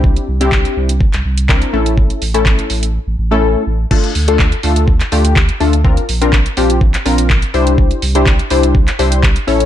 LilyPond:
<<
  \new Staff \with { instrumentName = "Analog polysynth" } { \time 4/4 \key d \minor \tempo 4 = 124 <c' d' e' g'>8 r16 <c' d' e' g'>4 r4 r16 <c' d' e' bes'>8 <a cis' e' a'>8~ | <a cis' e' a'>8 r16 <a cis' e' a'>4 r4 <a cis' e' a'>8. r8 | <a d' f' a'>8 r16 <a d' f' a'>8 r16 <a d' f' a'>8 r8 <a d' f' g'>8 r8 <a d' f' a'>16 r16 | <c' d' f' bes'>8 r16 <c' d' f' bes'>8 r16 <c' d' f' g'>8 r8 <c' d' f' bes'>8 r8 <d' e' g' c''>8~ |
<d' e' g' c''>8 r16 <d' e' g' c''>8 r16 <d' e' g' c''>8 r8 <d' e' g' c''>8 r8 <cis' e' a' cis''>8 | }
  \new Staff \with { instrumentName = "Sub bass" } { \clef bass \time 4/4 \key d \minor c,8 c,4 c,8. c,16 c,4 a,,8~ | a,,8 a,,4 a,,8. a,,16 a,,4 a,,8 | r8 d,4 d,4 d,4 d,8~ | d,8 bes,,4 bes,,4 bes,,4 c,8~ |
c,8 c,4 c,4 c,4 a,,8 | }
  \new DrumStaff \with { instrumentName = "Drums" } \drummode { \time 4/4 bd16 hh8 hh16 <hc bd>16 hh8 hh16 bd16 <hc hh>8 hh16 <hc bd>16 hh8 hh16 | bd16 hh16 hho16 hh16 <hc bd>16 hh16 hho16 hh16 r4 r4 | <cymc bd>16 hh16 hho16 hh16 <hc bd>16 hh16 hho16 hh16 bd16 <hc hh>16 hho16 hh16 <hc bd>16 hh16 hho16 hh16 | bd16 hh16 hho16 hh16 <hc bd>16 hh16 hho16 hh16 bd16 <hc hh>16 hho16 hh16 <hc bd>16 hh16 hho16 hh16 |
bd16 hh16 hho16 hh16 <hc bd>16 hh16 hho16 hh16 bd16 <hc hh>16 hho16 hh16 <hc bd>16 hh16 hho16 hh16 | }
>>